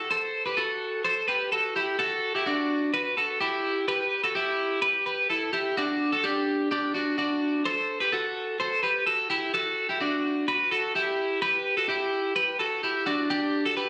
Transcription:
clean electric guitar
Already playing: F#4 A4
0.11 A4 C5
0.46 G4 B4
0.57 F#4 A4
1.05 A4 C5
1.28 G4 B4
1.52 F#4 A4
1.76 E4 G4
1.99 F#4 A4
2.35 E4 G4
2.46 D4 F#4
2.94 F#4 B4
3.17 F#4 A4
3.41 E4 G4
3.88 G4 B4
4.24 F#4 A4
4.35 E4 G4
4.82 G4 B4
5.06 G4 B4
5.30 E4 A4
5.53 E4 G4
5.77 D4 F#4
6.12 F#4 A4
6.24 D4 G4
6.71 D4 G4
6.94 D4 F#4
7.18 D4 F#4
7.65 A4 C5
8.00 G4 B4
8.12 F#4 A4
8.60 A4 C5
8.83 G4 B4
9.07 F#4 A4
9.30 E4 G4
9.54 F#4 A4
9.89 E4 G4
10.01 D4 F#4
10.48 F#4 B4
10.71 F#4 A4
10.95 E4 G4
11.42 G4 B4
11.77 F#4 A4
11.89 E4 G4
12.36 G4 B4
12.59 F#4 A4
12.83 E4 G4
13.06 D4 F#4
13.30 D4 G4
13.66 F#4 A4
13.77 G4 B4

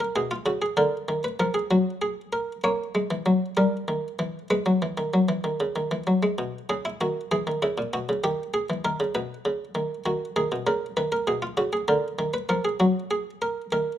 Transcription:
harpsichord
0.00 A#4
0.16 B2 G#4
0.31 F4
0.46 C#3 F#4
0.62 G#4
0.77 D3 A#4
1.08 D#3
1.24 B4
1.40 F3 A#4
1.54 G#4
1.71 F#3 F#4
2.02 G#4
2.33 A#4
2.64 A#3 C#5
2.95 G#3
3.11 E3
3.26 F#3
3.57 G3 A#4
3.88 D#3
4.19 E3
4.50 G#3 B4
4.66 F#3
4.82 E3
4.98 D#3
5.14 F#3
5.29 E3
5.44 D#3
5.60 C#3
5.76 D#3
5.91 E3
6.07 F#3
6.23 G#3
6.38 B2
6.69 C#3 G#4
6.85 E4
7.01 D#3 F#4
7.32 E3 G#4
7.47 D#3
7.62 C#3 E4
7.78 A#2
7.93 B2 F#4
8.09 C#3
8.24 D#3 G4
8.54 G#4
8.70 E3
8.85 D#3 A#4
9.00 C#3
9.15 B2 B4
9.45 C#3
9.75 D#3
10.06 D#3 F#4
10.36 D#3 G#4
10.52 B2
10.67 C#3 A#4
10.97 D#3 B4
11.12 A#4
11.27 B2 G#4
11.42 F4
11.57 C#3 F#4
11.73 G#4
11.88 D3 A#4
12.19 D#3
12.34 B4
12.49 F3 A#4
12.65 G#4
12.80 F#3 F#4
13.11 G#4
13.42 A#4
13.72 D#3 A#4

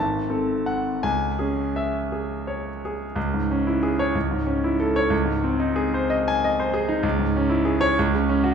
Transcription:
grand piano
Already playing: G#1 A5
0.30 C4 A4
0.66 F#5
1.03 C#2 G#5
1.39 C#4 G#4
1.76 E5
2.12 G#4
2.47 C#5
2.85 G#4
3.16 C#2
3.34 G#2
3.51 C#4
3.67 E4
3.83 G#4
3.99 C#5
4.15 C#2
4.31 G#2
4.47 C#4
4.64 E4
4.80 A4
4.96 C#5
5.10 C#2
5.25 G#2
5.44 C4
5.59 D#4
5.76 G#4
5.94 C5
6.10 D#5
6.28 G#5
6.44 D#5
6.60 C5
6.74 G#4
6.88 D#4
7.03 C#2
7.19 G#2
7.36 C#4
7.50 E4
7.65 G#4
7.81 C#5
7.99 C#2
8.15 C#3
8.29 C#4
8.44 F#4

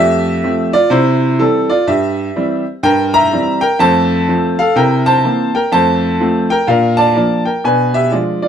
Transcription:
grand piano
Already playing: F2 A3 G4 E5
0.44 F3 A3 C4
0.73 F4 D5
0.90 C3 E4 C5
1.39 E3 G3 C4 A4
1.69 F4 D5
1.87 G2 G4 E5
2.36 E3 G3 C4
2.83 G2 A#4 G5
3.14 E5 A#5
3.33 E3 G3 C4
3.61 A#4 G5
3.79 F2 A3 C5 A5
4.28 F3 A3 C4
4.59 A4 F5
4.76 C3 E4 A#4 G5
5.06 C5 A5
5.24 E3 A#3 C4
5.55 A#4 G5
5.72 F2 A3 C5 A5
6.20 F3 A3 C4
6.50 A#4 G5
6.67 A#2 D4 A#4 F5
6.97 D5 A5
7.16 F3 A#3 D4
7.45 A#4 G5
7.64 B2 D4 B4 G#5
7.94 G4 E5
8.12 F3 G#3 D4 F4 D5
8.42 F4 D5

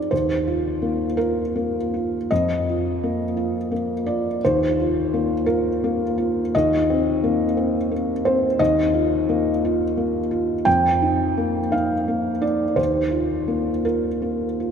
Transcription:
felt piano
Already playing: C4 D#4 G#4 D5
0.11 D#2 C5
0.47 F4
0.82 A#3
1.17 F4 A#4
1.56 A#3
1.94 F4
2.31 F2 D#5
2.69 F4
3.03 A#3
3.37 F4
3.71 A#3
4.06 F4 D5
4.45 D#2 C5
4.80 F4
5.14 A#3
5.46 F4 A#4
5.84 A#3
6.18 F4
6.55 D#2 D#5
6.90 C4
7.24 A#3
7.57 C4
7.91 A#3
8.25 C4 C5
8.59 D#2 D#5
8.94 F4
9.29 A#3
9.65 F4
9.97 A#3
10.31 F4
10.65 F2 G5
11.02 D#4
11.37 A#3
11.72 D#4 F5
12.08 A#3
12.41 D#4 D5
12.76 D#2 C5
13.12 F4
13.48 A#3
13.85 F4 A#4
14.22 A#3
14.60 F4

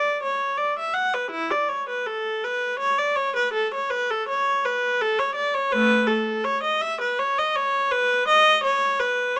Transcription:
viola
Already playing: D5
0.23 C#5
0.58 D5
0.79 E5
0.94 F#5
1.14 B4
1.31 E4
1.51 D5
1.69 C#5
1.89 B4
2.07 A4
2.44 B4
2.79 C#5
2.98 D5
3.16 C#5
3.36 B4
3.53 A4
3.74 C#5
3.90 B4
4.11 A4
4.28 C#5
4.65 B4
5.01 A4
5.19 C#5
5.35 D5
5.54 C#5
5.72 A3 B4
6.07 A4
6.44 C#5
6.63 D#5
6.81 E5
7.01 B4
7.19 C#5
7.38 D#5
7.56 C#5
7.92 B4
8.28 D#5
8.63 C#5
8.99 B4
9.37 C#5

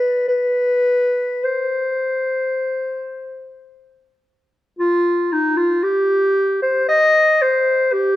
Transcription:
clarinet
Already playing: B4
0.28 B4
1.44 C5
4.79 F4
5.33 D#4
5.57 F4
5.83 G4
6.62 C5
6.89 D#5
7.42 C5
7.92 G4

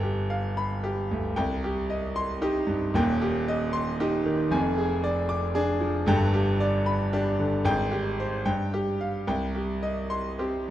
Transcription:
grand piano
Already playing: G1 G5
0.03 G4
0.30 F5
0.57 B5
0.84 G4
1.11 D2
1.36 C2 G5
1.64 G4
1.90 D#5
2.16 C6
2.42 D#4 G4
2.67 G2
2.94 D#1 D#2 G5
3.22 G4
3.48 D#5
3.73 C6
4.00 D#4 G4
4.26 D#3
4.51 F1 F2 G#5
4.78 G#4
5.04 D5
5.29 D6
5.55 D4 G#4
5.81 F3
6.06 G1 G2 G5
6.34 G4
6.60 D5
6.86 B5
7.13 D4 G4
7.39 D3
7.65 G#1 G#2 G5
7.91 G4
8.20 C5
8.46 G2 G5
8.74 G4
9.01 F5
9.28 C2 G5
9.55 G4
9.83 D#5
10.10 C6
10.39 C4 G4

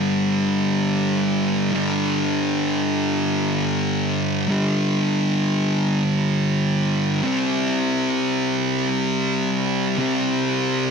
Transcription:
distorted electric guitar
Already playing: G2 D3 G3
1.73 G2 D3 G3
4.48 G2 D3 G3
7.24 C3 G3 C4
9.99 C3 G3 C4

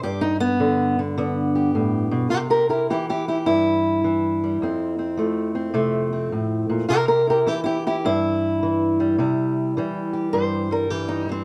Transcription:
steel-string acoustic guitar
0.03 G2 G4
0.21 D#4
0.40 B3
0.60 D3
0.99 D3
1.18 D3 B3
1.55 G4
1.75 A2
2.11 B2
2.30 C3 G4 A#4
2.50 G4 A#4
2.69 E4 G4 A#4
2.90 E3 E4 G4
3.09 E4 G4
3.28 E4 G4
3.46 G2 E4
4.04 E3
4.44 G3
4.62 F2 C4
4.99 C4
5.17 F3 A3
5.55 C4
5.74 C3 A3
6.13 C4
6.32 A2
6.70 A#2
6.89 C3 G4 A#4
7.08 G4 A#4
7.27 E4 G4 A#4
7.46 E3 E4 G4
7.64 E4 G4
7.87 E4 G4
8.05 G2 E4
8.63 E3
9.00 G3
9.18 C3 G3
9.77 E3 G3
10.13 G4
10.33 G2 C5
10.71 G3 A#4
10.90 E3 G4
11.08 D#4
11.29 E3 C4

